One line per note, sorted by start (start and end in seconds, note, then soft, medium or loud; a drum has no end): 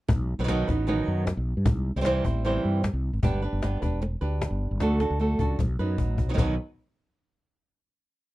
0.09 0.34 B1 medium
0.09 muted nylon-string guitar stroke medium
0.09 cajon bass medium
0.39 0.63 B1 medium
0.39 0.43 D#3 soft
0.39 0.43 F#3 soft
0.39 0.43 B3 medium
0.39 0.44 D#4 medium
0.39 0.44 B4 medium
0.44 0.47 D#3 medium
0.44 0.48 F#3 medium
0.44 0.48 B3 medium
0.44 0.48 D#4 medium
0.44 0.48 B4 medium
0.48 0.67 B2 medium
0.48 0.67 D#3 medium
0.48 0.67 F#3 medium
0.48 0.67 B3 medium
0.48 0.67 D#4 medium
0.48 0.66 B4 medium
0.48 cajon slap medium
0.68 1.00 A1 medium
0.68 0.87 F#3 soft
0.68 0.87 B3 soft
0.68 0.87 D#4 soft
0.68 0.86 B4 medium
0.68 cajon bass medium
0.68 cajon slap soft
0.87 1.25 B2 medium
0.87 1.26 D#3 medium
0.87 1.26 F#3 medium
0.87 1.26 B3 medium
0.87 1.26 D#4 medium
0.87 1.26 B4 medium
1.08 1.32 F#2 medium
1.27 muted nylon-string guitar stroke medium
1.27 cajon slap medium
1.37 1.53 B1 medium
1.57 1.65 G2 medium
1.66 1.90 C2 medium
1.66 muted nylon-string guitar stroke medium
1.66 cajon bass loud
1.96 2.20 C2 medium
1.96 2.00 E3 soft
1.96 2.00 G3 medium
1.96 2.00 C4 medium
1.96 2.01 E4 soft
1.96 2.01 C5 medium
2.01 2.05 E3 medium
2.01 2.04 G3 medium
2.01 2.05 C4 medium
2.01 2.05 E4 medium
2.01 2.05 C5 medium
2.01 cajon slap medium
2.05 2.24 C3 medium
2.05 2.24 E3 medium
2.05 2.24 G3 medium
2.05 2.24 C4 medium
2.05 2.24 E4 medium
2.05 2.24 C5 medium
2.25 2.57 A1 medium
2.25 2.44 G3 soft
2.25 2.44 C4 soft
2.25 2.44 E4 soft
2.25 2.44 C5 soft
2.25 cajon bass medium
2.44 2.82 C3 medium
2.44 2.83 E3 medium
2.44 2.83 G3 medium
2.44 2.83 C4 medium
2.44 2.83 E4 medium
2.44 2.84 C5 medium
2.44 cajon slap soft
2.64 2.89 G2 medium
2.64 cajon slap soft
2.83 muted nylon-string guitar stroke medium
2.83 cajon slap medium
2.93 3.10 C2 medium
3.13 3.21 G#1 medium
3.23 3.47 G1 medium
3.23 3.41 G3 medium
3.23 3.42 B3 medium
3.23 3.42 D4 medium
3.23 3.42 G4 medium
3.23 3.41 B4 medium
3.23 cajon bass medium
3.42 3.62 D4 soft
3.42 3.62 G4 soft
3.42 3.61 B4 soft
3.53 3.77 G1 medium
3.62 3.81 B3 medium
3.62 3.81 D4 medium
3.62 3.81 G4 medium
3.62 3.81 B4 medium
3.62 cajon slap medium
3.82 4.14 E1 medium
3.82 4.01 D4 soft
3.82 4.01 G4 medium
3.82 4.01 B4 medium
3.82 cajon bass medium
3.82 cajon slap soft
4.02 muted nylon-string guitar stroke medium
4.02 cajon slap soft
4.21 4.46 D2 medium
4.21 4.80 D4 soft
4.21 4.80 G4 soft
4.21 4.79 B4 medium
4.21 cajon slap soft
4.42 cajon slap medium
4.51 4.67 G1 medium
4.71 4.79 G1 medium
4.80 5.05 D2 medium
4.80 4.99 D3 medium
4.80 4.99 A3 medium
4.80 5.00 D4 medium
4.80 5.00 F#4 medium
4.80 4.99 A4 medium
4.80 cajon slap medium
5.00 5.19 D4 soft
5.00 5.19 F#4 soft
5.00 5.19 A4 medium
5.00 cajon slap medium
5.10 5.35 D2 medium
5.20 5.39 A3 soft
5.20 5.39 D4 medium
5.20 5.39 F#4 medium
5.20 5.38 A4 medium
5.39 5.56 C#2 medium
5.39 5.59 D4 soft
5.39 5.59 F#4 soft
5.39 5.58 A4 medium
5.39 cajon bass medium
5.59 5.76 B1 medium
5.59 muted nylon-string guitar stroke medium
5.59 cajon bass medium
5.79 5.95 F#2 medium
5.79 6.28 F#3 soft
5.79 6.29 B3 soft
5.79 6.29 D#4 medium
5.79 6.29 B4 medium
5.98 6.16 A1 medium
5.98 cajon bass medium
6.18 6.36 B1 medium
6.18 cajon bass medium
6.29 6.33 D#3 soft
6.29 6.33 F#3 medium
6.29 6.33 B3 medium
6.29 6.33 D#4 medium
6.29 6.34 B4 medium
6.34 6.37 D#3 medium
6.34 6.38 F#3 medium
6.34 6.38 B3 medium
6.34 6.38 D#4 medium
6.34 6.38 B4 medium
6.34 cajon bass medium
6.38 6.57 B1 medium
6.38 6.54 B2 medium
6.38 6.54 D#3 medium
6.38 6.54 F#3 medium
6.38 6.54 B3 medium
6.38 6.54 D#4 medium
6.38 6.54 B4 medium